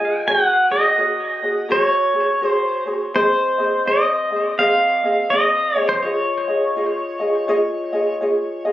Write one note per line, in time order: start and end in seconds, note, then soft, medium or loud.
0.00 0.27 F4 soft
0.00 0.27 G#4 soft
0.00 0.26 D#5 soft
0.00 0.27 G#5 loud
0.27 0.71 F#4 medium
0.27 0.70 G#4 medium
0.27 0.70 A#4 medium
0.27 0.69 C#5 medium
0.27 0.45 G5 medium
0.45 0.72 F#5 medium
0.70 0.97 F#4 soft
0.70 0.98 G#4 soft
0.70 0.97 C#5 soft
0.70 1.74 D#5 medium
0.98 1.42 F#4 medium
0.98 1.42 G#4 medium
0.98 1.42 A#4 medium
0.98 1.41 C#5 medium
1.42 1.68 F#4 soft
1.42 1.69 G#4 soft
1.42 1.69 C#5 soft
1.69 2.14 F#4 medium
1.69 2.14 G#4 medium
1.69 2.13 A#4 medium
1.69 2.13 C#5 medium
1.69 2.46 C#5 medium
2.14 2.41 F#4 soft
2.14 2.42 G#4 soft
2.14 2.41 C#5 medium
2.41 2.86 F#4 medium
2.41 2.86 G#4 medium
2.41 2.85 A#4 medium
2.41 2.84 C#5 medium
2.46 2.83 C5 medium
2.86 3.15 F#4 soft
2.86 3.14 G#4 medium
2.86 3.14 C#5 medium
3.14 3.59 C4 medium
3.14 3.58 G#4 medium
3.14 3.58 C5 medium
3.14 3.87 C5 medium
3.14 3.57 D#5 medium
3.58 3.85 C4 soft
3.58 3.86 G#4 soft
3.58 3.86 D#5 soft
3.86 4.30 C4 medium
3.86 4.30 G#4 medium
3.86 4.30 C5 medium
3.86 4.55 D#5 medium
3.86 4.30 D#5 medium
4.31 4.58 C4 soft
4.31 4.59 G#4 soft
4.31 4.59 D#5 soft
4.59 5.03 C4 medium
4.59 5.03 G#4 medium
4.59 5.03 C5 medium
4.59 5.02 D#5 medium
4.59 5.27 F5 loud
5.03 5.32 C4 soft
5.03 5.32 G#4 soft
5.03 5.31 D#5 soft
5.30 5.76 C4 medium
5.30 5.75 G#4 medium
5.30 5.75 C5 soft
5.30 5.77 D#5 medium
5.30 5.74 D#5 medium
5.76 6.04 C4 soft
5.76 6.04 G#4 soft
5.76 5.90 C#5 medium
5.76 6.03 D#5 medium
5.89 6.02 C5 medium
6.03 6.48 F4 medium
6.03 6.48 G#4 medium
6.03 8.16 C#5 medium
6.03 6.47 C#5 medium
6.03 6.47 D#5 medium
6.48 6.75 F4 soft
6.48 6.76 G#4 soft
6.48 6.76 D#5 medium
6.76 7.20 F4 medium
6.76 7.20 G#4 medium
6.76 7.20 C#5 medium
6.76 7.18 D#5 medium
7.20 7.47 F4 soft
7.20 7.48 G#4 soft
7.20 7.48 D#5 medium
7.48 7.92 F4 medium
7.48 7.92 G#4 medium
7.48 7.92 C#5 medium
7.48 7.91 D#5 medium
7.93 8.20 F4 soft
7.93 8.21 G#4 medium
7.93 8.20 D#5 medium
8.21 8.65 F4 medium
8.21 8.65 G#4 medium
8.21 8.65 C#5 medium
8.21 8.64 D#5 medium
8.65 8.72 F4 soft
8.65 8.72 G#4 soft
8.65 8.72 D#5 medium